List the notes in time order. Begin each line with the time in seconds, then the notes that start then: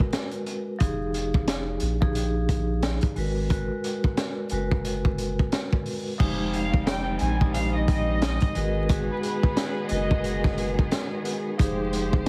Already playing: G#3 F#4 A#4 B4
0.00 kick
0.13 snare, closed hi-hat
0.31 closed hi-hat
0.46 closed hi-hat
0.79 F1 F3 D#4 G4 G#4, kick, closed hi-hat
1.14 closed hi-hat
1.34 kick
1.48 snare, closed hi-hat
1.80 A#1, closed hi-hat
2.01 F3 D#4 G4 G#4, kick
2.15 closed hi-hat
2.49 kick, closed hi-hat
2.83 snare, closed hi-hat
3.01 kick, closed hi-hat
3.16 G#1 G#3 F#4 A#4 B4, open hi-hat
3.50 G#3 F#4 A#4 B4, kick, closed hi-hat
3.84 closed hi-hat
4.04 kick
4.17 snare, closed hi-hat
4.49 F#1 G#3 F#4 A#4, closed hi-hat
4.54 B4
4.71 kick
4.85 closed hi-hat
5.05 kick
5.18 closed hi-hat
5.39 kick
5.52 snare, closed hi-hat
5.73 kick
5.86 open hi-hat
6.18 F1 D#3 F3 G3 G#3 C4 D#4 G4, kick, crash
6.54 F5, closed hi-hat
6.74 kick
6.87 G5, snare, closed hi-hat
7.19 A#1 G#5, closed hi-hat
7.40 F3 G#3 D#4 G4, kick
7.54 F5, closed hi-hat
7.75 D#5
7.88 D#5, kick, closed hi-hat
8.22 snare, closed hi-hat
8.40 kick, closed hi-hat
8.55 G#1 D#3 G#3 B3 F#4 G#4 A#4 B4, closed hi-hat
8.89 G#3 F#4 G#4 B4, kick, closed hi-hat
9.10 B4
9.23 B4, closed hi-hat
9.43 kick
9.57 snare, closed hi-hat
9.89 F#1 G#3 F#4 A#4 D#5, closed hi-hat
9.93 B4
10.11 kick
10.24 closed hi-hat
10.44 kick, snare
10.58 closed hi-hat
10.79 kick
10.91 snare, closed hi-hat
11.25 closed hi-hat
11.58 F1 F3 G#3 D#4 G4 G#4 C5, kick, closed hi-hat
11.93 closed hi-hat
12.13 kick